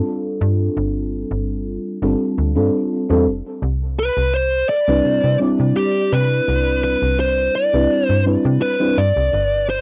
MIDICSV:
0, 0, Header, 1, 4, 480
1, 0, Start_track
1, 0, Key_signature, 0, "major"
1, 0, Tempo, 714286
1, 517, Time_signature, 4, 2, 24, 8
1, 6593, End_track
2, 0, Start_track
2, 0, Title_t, "Lead electric guitar"
2, 0, Program_c, 0, 29
2, 2682, Note_on_c, 0, 71, 82
2, 2915, Note_on_c, 0, 72, 93
2, 2927, Note_off_c, 0, 71, 0
2, 3151, Note_off_c, 0, 72, 0
2, 3154, Note_on_c, 0, 74, 98
2, 3608, Note_off_c, 0, 74, 0
2, 3874, Note_on_c, 0, 67, 86
2, 4115, Note_on_c, 0, 71, 90
2, 4123, Note_off_c, 0, 67, 0
2, 4588, Note_off_c, 0, 71, 0
2, 4596, Note_on_c, 0, 71, 93
2, 4834, Note_off_c, 0, 71, 0
2, 4837, Note_on_c, 0, 72, 104
2, 5075, Note_on_c, 0, 74, 102
2, 5084, Note_off_c, 0, 72, 0
2, 5411, Note_off_c, 0, 74, 0
2, 5411, Note_on_c, 0, 72, 102
2, 5529, Note_off_c, 0, 72, 0
2, 5793, Note_on_c, 0, 71, 99
2, 6036, Note_on_c, 0, 74, 104
2, 6042, Note_off_c, 0, 71, 0
2, 6489, Note_off_c, 0, 74, 0
2, 6516, Note_on_c, 0, 72, 99
2, 6593, Note_off_c, 0, 72, 0
2, 6593, End_track
3, 0, Start_track
3, 0, Title_t, "FM electric piano"
3, 0, Program_c, 1, 5
3, 0, Note_on_c, 1, 55, 85
3, 0, Note_on_c, 1, 60, 78
3, 0, Note_on_c, 1, 62, 79
3, 0, Note_on_c, 1, 65, 79
3, 0, Note_on_c, 1, 69, 97
3, 1325, Note_off_c, 1, 55, 0
3, 1329, Note_off_c, 1, 60, 0
3, 1330, Note_off_c, 1, 62, 0
3, 1333, Note_off_c, 1, 65, 0
3, 1335, Note_off_c, 1, 69, 0
3, 1361, Note_on_c, 1, 55, 75
3, 1363, Note_on_c, 1, 60, 69
3, 1366, Note_on_c, 1, 62, 66
3, 1367, Note_on_c, 1, 65, 66
3, 1370, Note_on_c, 1, 69, 78
3, 1689, Note_off_c, 1, 55, 0
3, 1690, Note_off_c, 1, 60, 0
3, 1691, Note_off_c, 1, 62, 0
3, 1692, Note_off_c, 1, 65, 0
3, 1694, Note_off_c, 1, 69, 0
3, 1715, Note_on_c, 1, 55, 74
3, 1717, Note_on_c, 1, 60, 70
3, 1721, Note_on_c, 1, 62, 71
3, 1723, Note_on_c, 1, 65, 71
3, 1725, Note_on_c, 1, 69, 81
3, 2051, Note_off_c, 1, 55, 0
3, 2052, Note_off_c, 1, 60, 0
3, 2054, Note_off_c, 1, 62, 0
3, 2055, Note_off_c, 1, 65, 0
3, 2056, Note_off_c, 1, 69, 0
3, 2078, Note_on_c, 1, 55, 92
3, 2081, Note_on_c, 1, 60, 83
3, 2084, Note_on_c, 1, 62, 79
3, 2087, Note_on_c, 1, 65, 83
3, 2088, Note_on_c, 1, 69, 101
3, 2178, Note_off_c, 1, 55, 0
3, 2180, Note_off_c, 1, 60, 0
3, 2182, Note_off_c, 1, 62, 0
3, 2183, Note_off_c, 1, 65, 0
3, 2184, Note_off_c, 1, 69, 0
3, 3279, Note_on_c, 1, 55, 88
3, 3279, Note_on_c, 1, 60, 81
3, 3283, Note_on_c, 1, 62, 83
3, 3285, Note_on_c, 1, 64, 80
3, 3287, Note_on_c, 1, 71, 94
3, 3608, Note_off_c, 1, 55, 0
3, 3608, Note_off_c, 1, 60, 0
3, 3610, Note_off_c, 1, 62, 0
3, 3611, Note_off_c, 1, 64, 0
3, 3612, Note_off_c, 1, 71, 0
3, 3623, Note_on_c, 1, 55, 83
3, 3628, Note_on_c, 1, 60, 80
3, 3634, Note_on_c, 1, 62, 76
3, 3640, Note_on_c, 1, 64, 83
3, 3645, Note_on_c, 1, 74, 94
3, 5165, Note_off_c, 1, 55, 0
3, 5167, Note_off_c, 1, 60, 0
3, 5170, Note_off_c, 1, 62, 0
3, 5174, Note_off_c, 1, 64, 0
3, 5176, Note_off_c, 1, 74, 0
3, 5193, Note_on_c, 1, 55, 73
3, 5196, Note_on_c, 1, 60, 67
3, 5199, Note_on_c, 1, 62, 68
3, 5201, Note_on_c, 1, 64, 70
3, 5203, Note_on_c, 1, 71, 82
3, 5525, Note_off_c, 1, 55, 0
3, 5526, Note_off_c, 1, 60, 0
3, 5528, Note_off_c, 1, 62, 0
3, 5529, Note_off_c, 1, 64, 0
3, 5530, Note_off_c, 1, 71, 0
3, 5551, Note_on_c, 1, 55, 78
3, 5551, Note_on_c, 1, 60, 70
3, 5554, Note_on_c, 1, 62, 72
3, 5557, Note_on_c, 1, 64, 73
3, 5559, Note_on_c, 1, 71, 82
3, 5889, Note_off_c, 1, 55, 0
3, 5889, Note_off_c, 1, 60, 0
3, 5891, Note_off_c, 1, 62, 0
3, 5892, Note_off_c, 1, 64, 0
3, 5893, Note_off_c, 1, 71, 0
3, 5912, Note_on_c, 1, 55, 92
3, 5916, Note_on_c, 1, 60, 88
3, 5918, Note_on_c, 1, 62, 87
3, 5921, Note_on_c, 1, 64, 84
3, 5923, Note_on_c, 1, 71, 103
3, 6016, Note_off_c, 1, 55, 0
3, 6017, Note_off_c, 1, 60, 0
3, 6019, Note_off_c, 1, 62, 0
3, 6020, Note_off_c, 1, 64, 0
3, 6021, Note_off_c, 1, 71, 0
3, 6593, End_track
4, 0, Start_track
4, 0, Title_t, "FM bass"
4, 0, Program_c, 2, 39
4, 276, Note_on_c, 2, 43, 96
4, 465, Note_off_c, 2, 43, 0
4, 516, Note_on_c, 2, 31, 94
4, 836, Note_off_c, 2, 31, 0
4, 880, Note_on_c, 2, 31, 85
4, 1195, Note_off_c, 2, 31, 0
4, 1358, Note_on_c, 2, 31, 94
4, 1449, Note_off_c, 2, 31, 0
4, 1599, Note_on_c, 2, 38, 79
4, 1716, Note_on_c, 2, 43, 91
4, 1726, Note_off_c, 2, 38, 0
4, 1814, Note_off_c, 2, 43, 0
4, 2083, Note_on_c, 2, 40, 89
4, 2197, Note_on_c, 2, 29, 83
4, 2207, Note_off_c, 2, 40, 0
4, 2294, Note_off_c, 2, 29, 0
4, 2434, Note_on_c, 2, 36, 102
4, 2755, Note_off_c, 2, 36, 0
4, 2801, Note_on_c, 2, 36, 82
4, 3115, Note_off_c, 2, 36, 0
4, 3280, Note_on_c, 2, 36, 93
4, 3370, Note_off_c, 2, 36, 0
4, 3396, Note_on_c, 2, 48, 47
4, 3496, Note_off_c, 2, 48, 0
4, 3521, Note_on_c, 2, 48, 85
4, 3610, Note_off_c, 2, 48, 0
4, 3761, Note_on_c, 2, 48, 93
4, 3850, Note_off_c, 2, 48, 0
4, 4116, Note_on_c, 2, 48, 91
4, 4305, Note_off_c, 2, 48, 0
4, 4355, Note_on_c, 2, 36, 98
4, 4676, Note_off_c, 2, 36, 0
4, 4718, Note_on_c, 2, 36, 85
4, 5034, Note_off_c, 2, 36, 0
4, 5199, Note_on_c, 2, 36, 91
4, 5290, Note_off_c, 2, 36, 0
4, 5439, Note_on_c, 2, 43, 82
4, 5624, Note_off_c, 2, 43, 0
4, 5679, Note_on_c, 2, 48, 102
4, 5770, Note_off_c, 2, 48, 0
4, 6034, Note_on_c, 2, 43, 92
4, 6132, Note_off_c, 2, 43, 0
4, 6159, Note_on_c, 2, 36, 86
4, 6249, Note_off_c, 2, 36, 0
4, 6273, Note_on_c, 2, 31, 101
4, 6593, Note_off_c, 2, 31, 0
4, 6593, End_track
0, 0, End_of_file